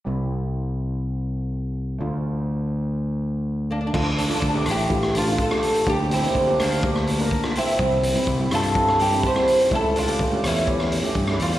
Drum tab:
CC |----------------|----------------|x---------------|----------------|
HH |----------------|----------------|--xxx-xxx-xxx-xx|x-xxx-xxx-xxx-xx|
SD |----------------|----------------|------r--r---r--|------r--r---r--|
BD |----------------|----------------|o---o---o---o---|o---o---o---o---|

CC |----------------|----------------|
HH |x-xxx-xxx-xxx-xx|x-xxx-xxx-xxx-xx|
SD |------r--r---r--|------r--r---r--|
BD |o---o---o---o---|o---o---o---o---|